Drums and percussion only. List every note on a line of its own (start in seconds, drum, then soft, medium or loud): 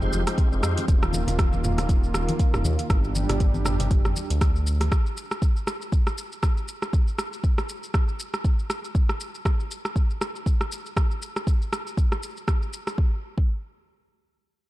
0.02 mid tom medium
0.02 shaker soft
0.13 muted conga medium
0.13 shaker loud
0.27 cross-stick medium
0.27 closed hi-hat medium
0.27 shaker soft
0.38 kick loud
0.38 closed hi-hat soft
0.38 muted conga soft
0.38 shaker medium
0.53 shaker soft
0.63 cross-stick medium
0.63 shaker medium
0.77 closed hi-hat soft
0.77 muted conga soft
0.77 shaker soft
0.88 kick loud
0.88 closed hi-hat soft
0.88 shaker medium
1.03 cross-stick medium
1.03 muted conga soft
1.03 shaker soft
1.13 high conga loud
1.13 shaker medium
1.27 closed hi-hat medium
1.27 muted conga soft
1.27 low conga loud
1.27 shaker soft
1.39 kick loud
1.39 cross-stick medium
1.39 closed hi-hat soft
1.39 high conga medium
1.39 shaker medium
1.53 high conga medium
1.53 shaker soft
1.64 mid tom medium
1.64 muted conga soft
1.64 low conga loud
1.64 shaker medium
1.78 cross-stick medium
1.78 closed hi-hat medium
1.78 low conga loud
1.78 shaker soft
1.89 kick loud
1.89 closed hi-hat soft
1.89 muted conga soft
1.89 shaker medium
2.04 shaker soft
2.14 cross-stick medium
2.14 muted conga soft
2.14 shaker medium
2.29 closed hi-hat medium
2.29 high conga loud
2.29 shaker soft
2.39 kick loud
2.39 closed hi-hat soft
2.39 muted conga soft
2.39 shaker medium
2.54 cross-stick medium
2.54 mid tom medium
2.54 shaker soft
2.65 high conga medium
2.65 low conga medium
2.65 shaker medium
2.79 closed hi-hat soft
2.79 muted conga medium
2.79 shaker soft
2.90 kick loud
2.90 cross-stick medium
2.90 closed hi-hat soft
2.90 shaker medium
3.04 muted conga medium
3.04 shaker soft
3.15 high conga medium
3.15 shaker loud
3.29 cross-stick medium
3.29 closed hi-hat medium
3.29 muted conga soft
3.29 low conga loud
3.29 shaker soft
3.40 kick loud
3.40 closed hi-hat soft
3.40 high conga medium
3.40 shaker medium
3.54 high conga medium
3.54 shaker soft
3.65 cross-stick medium
3.65 mid tom medium
3.65 muted conga soft
3.65 low conga loud
3.65 shaker medium
3.80 closed hi-hat medium
3.80 low conga loud
3.80 shaker soft
3.91 kick loud
3.91 closed hi-hat soft
3.91 muted conga soft
3.91 shaker medium
4.05 cross-stick medium
4.05 mid tom medium
4.05 shaker soft
4.16 muted conga soft
4.16 shaker medium
4.30 closed hi-hat soft
4.30 shaker soft
4.41 kick loud
4.41 cross-stick medium
4.41 closed hi-hat soft
4.41 muted conga soft
4.41 shaker medium
4.56 shaker soft
4.67 shaker medium
4.80 cross-stick medium
4.80 closed hi-hat soft
4.80 muted conga soft
4.80 shaker soft
4.92 kick loud
4.92 cross-stick medium
4.92 shaker soft
5.06 shaker soft
5.17 shaker medium
5.31 cross-stick medium
5.31 shaker soft
5.42 kick loud
5.42 shaker soft
5.57 shaker soft
5.67 cross-stick medium
5.67 shaker medium
5.82 shaker soft
5.92 kick loud
5.92 shaker soft
6.07 cross-stick medium
6.07 shaker soft
6.18 shaker medium
6.32 shaker soft
6.43 kick loud
6.43 cross-stick medium
6.43 shaker soft
6.57 shaker soft
6.68 shaker medium
6.82 cross-stick medium
6.82 shaker soft
6.93 kick loud
6.93 shaker soft
7.08 shaker soft
7.19 cross-stick medium
7.19 shaker medium
7.33 shaker soft
7.44 kick loud
7.44 shaker soft
7.58 cross-stick medium
7.58 shaker soft
7.69 shaker medium
7.83 shaker soft
7.94 kick loud
7.94 cross-stick medium
7.94 shaker soft
8.09 shaker soft
8.20 shaker medium
8.34 cross-stick medium
8.34 shaker soft
8.44 kick loud
8.44 shaker soft
8.59 shaker soft
8.70 cross-stick medium
8.70 shaker medium
8.84 shaker soft
8.95 kick loud
8.95 shaker soft
9.09 cross-stick medium
9.09 shaker soft
9.20 shaker medium
9.35 shaker soft
9.45 kick loud
9.45 cross-stick medium
9.45 shaker soft
9.60 shaker soft
9.71 shaker medium
9.85 cross-stick medium
9.85 shaker soft
9.96 kick loud
9.96 shaker soft
10.11 shaker soft
10.21 cross-stick medium
10.21 shaker medium
10.36 shaker soft
10.46 kick loud
10.46 shaker soft
10.61 cross-stick medium
10.61 shaker soft
10.72 shaker medium
10.86 shaker soft
10.97 kick loud
10.97 cross-stick medium
10.97 shaker soft
11.11 shaker soft
11.22 shaker medium
11.36 cross-stick medium
11.36 shaker soft
11.47 kick loud
11.47 shaker soft
11.62 shaker soft
11.73 cross-stick medium
11.73 shaker medium
11.87 shaker soft
11.97 kick loud
11.97 shaker soft
12.12 cross-stick medium
12.12 shaker soft
12.23 shaker medium
12.37 shaker soft
12.48 kick loud
12.48 cross-stick medium
12.48 shaker soft
12.62 shaker soft
12.73 shaker medium
12.87 cross-stick medium
12.87 shaker soft
12.98 kick loud
13.38 kick loud